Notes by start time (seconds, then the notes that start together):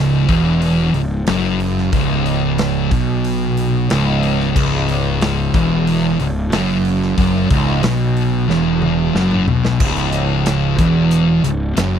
Already playing: C#1 C#2
0.29 E1 E2, kick, open hi-hat
0.62 open hi-hat
0.94 C#1 C#2, open hi-hat
1.27 F#1 F#2, snare, open hi-hat
1.60 open hi-hat
1.78 snare
1.93 C#1 C#2, kick, open hi-hat
2.26 open hi-hat
2.58 snare, open hi-hat
2.91 B1 B2, kick, open hi-hat
3.25 open hi-hat
3.57 open hi-hat
3.90 C#1 C#2, snare, open hi-hat
4.23 open hi-hat
4.40 snare
4.56 C#1 C#2, kick, crash
4.89 open hi-hat
5.21 snare, open hi-hat
5.54 E1 E2, kick, open hi-hat
5.87 open hi-hat
6.19 C#1 C#2, open hi-hat
6.52 F#1 F#2, snare, open hi-hat
6.85 open hi-hat
7.03 snare
7.18 F#1 F#2, kick, open hi-hat
7.50 C#1 C#2, kick, open hi-hat
7.83 B1 B2, snare, open hi-hat
8.17 open hi-hat
8.48 E1 E2, snare
8.82 mid tom
9.14 F#1 F#2, snare
9.31 mid tom
9.47 B1 B2, floor tom
9.65 snare
9.80 C#1 C#2, kick, crash
9.96 snare, closed hi-hat
10.12 closed hi-hat
10.46 snare, closed hi-hat
10.78 E1 E2, kick, closed hi-hat
11.11 closed hi-hat
11.44 C#1 C#2, closed hi-hat
11.76 F#1 F#2, snare, closed hi-hat